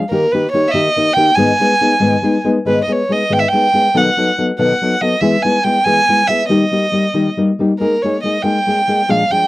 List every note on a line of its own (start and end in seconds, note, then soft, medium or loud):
0.09 0.25 D#3 medium
0.09 0.25 A#3 medium
0.09 0.25 D#4 medium
0.09 0.25 G4 medium
0.09 0.33 A#4 medium
0.32 0.45 D#3 medium
0.32 0.46 A#3 medium
0.32 0.46 D#4 medium
0.32 0.46 G4 medium
0.32 0.51 B4 medium
0.51 0.66 D#3 medium
0.51 0.66 A#3 medium
0.51 0.66 D#4 medium
0.51 0.66 G4 soft
0.51 0.69 C#5 medium
0.68 1.15 D#5 medium
0.68 0.73 E5 medium
0.74 0.88 D#3 medium
0.74 0.88 A#3 medium
0.74 0.88 D#4 medium
0.74 0.88 G4 medium
0.96 1.09 D#3 soft
0.96 1.09 A#3 soft
0.96 1.09 D#4 soft
0.96 1.10 G4 soft
1.13 1.29 D#3 medium
1.13 1.29 A#3 medium
1.13 1.29 D#4 medium
1.13 1.37 G5 loud
1.18 1.30 G4 medium
1.35 1.51 G#2 medium
1.35 1.51 D#3 medium
1.35 1.51 G#3 medium
1.35 1.51 B3 medium
1.35 1.51 D#4 medium
1.35 1.51 G#4 medium
1.35 2.44 G#5 medium
1.60 1.72 G#3 medium
1.60 1.73 B3 medium
1.60 1.73 D#4 medium
1.60 1.73 G#4 medium
1.80 1.93 G#3 soft
1.80 1.93 B3 soft
1.80 1.93 D#4 medium
1.80 1.94 G#4 medium
1.99 2.14 G#2 medium
1.99 2.15 D#3 soft
1.99 2.15 G#3 medium
1.99 2.15 B3 medium
1.99 2.15 D#4 medium
1.99 2.15 G#4 medium
2.22 2.36 G#3 soft
2.22 2.36 B3 soft
2.22 2.36 D#4 medium
2.22 2.36 G#4 medium
2.44 2.57 G#3 medium
2.44 2.57 B3 medium
2.44 2.58 D#4 medium
2.44 2.58 G#4 medium
2.65 2.79 G#2 medium
2.65 2.80 D#3 medium
2.65 2.80 G#3 medium
2.65 2.80 B3 medium
2.65 2.80 D#4 medium
2.65 2.80 G#4 medium
2.65 2.83 B4 medium
2.84 3.01 G#3 soft
2.84 2.93 D#5 medium
2.88 3.01 B3 medium
2.88 3.01 D#4 soft
2.88 3.01 G#4 medium
2.88 3.13 C#5 medium
3.09 3.22 G#3 soft
3.09 3.22 B3 soft
3.09 3.22 D#4 soft
3.09 3.23 G#4 soft
3.09 3.34 D#5 medium
3.29 3.44 G#2 medium
3.29 3.44 D#3 medium
3.29 3.44 G#3 medium
3.29 3.44 B3 medium
3.29 3.44 D#4 medium
3.29 3.44 G#4 medium
3.29 3.41 G5 medium
3.39 3.50 E5 medium
3.48 3.99 G5 medium
3.52 3.65 G#3 soft
3.52 3.66 B3 soft
3.52 3.66 D#4 medium
3.52 3.66 G#4 soft
3.73 3.86 G#3 soft
3.73 3.86 B3 soft
3.73 3.87 D#4 soft
3.73 3.87 G#4 medium
3.94 4.08 B2 medium
3.94 4.08 D#3 medium
3.94 4.08 F#3 medium
3.94 4.08 B3 medium
3.94 4.09 D#4 medium
3.94 4.09 A4 medium
3.94 4.39 F#5 medium
4.17 4.29 F#3 medium
4.17 4.30 B3 medium
4.17 4.30 D#4 medium
4.17 4.30 A4 medium
4.38 4.50 F#3 soft
4.38 4.50 B3 soft
4.38 4.50 D#4 soft
4.38 4.51 A4 medium
4.59 4.72 B2 medium
4.59 4.72 D#3 medium
4.59 4.72 F#3 medium
4.59 4.73 B3 medium
4.59 4.72 D#4 medium
4.59 4.73 A4 medium
4.59 5.02 F#5 medium
4.81 4.94 F#3 soft
4.81 4.94 B3 soft
4.81 4.94 D#4 medium
4.81 4.94 A4 soft
5.01 5.14 F#3 soft
5.01 5.14 B3 medium
5.01 5.14 D#4 soft
5.01 5.14 A4 soft
5.01 5.22 D#5 medium
5.20 5.35 E3 medium
5.20 5.36 G#3 medium
5.20 5.36 B3 medium
5.20 5.36 E4 medium
5.20 5.36 G#4 medium
5.20 5.44 E5 medium
5.42 5.57 G#3 medium
5.42 5.57 B3 medium
5.42 5.57 E4 medium
5.42 5.57 G#4 medium
5.42 5.65 G#5 medium
5.64 5.77 G#3 soft
5.64 5.77 B3 soft
5.64 5.77 E4 medium
5.64 5.78 G#4 medium
5.64 5.86 G5 medium
5.84 5.99 E3 medium
5.84 5.99 G#3 medium
5.84 5.99 B3 medium
5.84 6.00 E4 medium
5.84 6.00 G#4 medium
5.84 6.29 G#5 loud
6.09 6.21 G#3 medium
6.09 6.21 B3 soft
6.09 6.21 E4 medium
6.09 6.21 G#4 soft
6.27 6.41 G#3 soft
6.27 6.41 B3 medium
6.27 6.41 E4 medium
6.27 6.42 G#4 medium
6.27 6.47 E5 medium
6.48 6.63 D#3 medium
6.48 6.63 G3 medium
6.48 6.63 A#3 medium
6.48 6.63 D#4 medium
6.48 6.64 G4 medium
6.48 7.33 D#5 medium
6.71 6.84 G3 medium
6.71 6.84 A#3 medium
6.71 6.85 D#4 medium
6.71 6.85 G4 medium
6.92 7.05 G3 soft
6.92 7.05 A#3 soft
6.92 7.05 D#4 soft
6.92 7.06 G4 medium
7.14 7.28 D#3 medium
7.14 7.28 G3 medium
7.14 7.28 A#3 medium
7.14 7.28 D#4 medium
7.14 7.28 G4 medium
7.37 7.50 G3 soft
7.37 7.50 A#3 medium
7.37 7.50 D#4 soft
7.37 7.51 G4 soft
7.59 7.71 G3 medium
7.59 7.72 A#3 medium
7.59 7.72 D#4 medium
7.59 7.72 G4 medium
7.79 7.94 G#3 medium
7.79 7.94 A#3 medium
7.79 7.94 D#4 medium
7.79 7.94 G#4 medium
7.79 8.04 A#4 medium
8.02 8.16 G#3 soft
8.02 8.16 A#3 medium
8.02 8.16 D#4 medium
8.02 8.17 G#4 medium
8.02 8.22 C#5 medium
8.23 8.36 G#3 soft
8.23 8.36 A#3 soft
8.23 8.37 D#4 soft
8.23 8.37 G#4 medium
8.23 8.44 D#5 medium
8.42 8.58 G#3 medium
8.42 8.58 A#3 medium
8.42 8.58 D#4 medium
8.42 8.58 G#4 medium
8.42 9.11 G5 medium
8.66 8.79 G#3 soft
8.66 8.79 A#3 soft
8.66 8.80 D#4 soft
8.66 8.80 G#4 medium
8.88 9.00 G#3 medium
8.88 9.00 A#3 soft
8.88 9.00 D#4 medium
8.88 9.01 G#4 medium
9.08 9.22 A#2 medium
9.08 9.22 F3 medium
9.08 9.22 G#3 medium
9.08 9.23 D4 medium
9.08 9.22 G#4 medium
9.08 9.32 F5 medium
9.30 9.43 F3 medium
9.30 9.43 G#3 medium
9.30 9.44 D4 medium
9.30 9.44 G#4 medium
9.30 9.47 G5 medium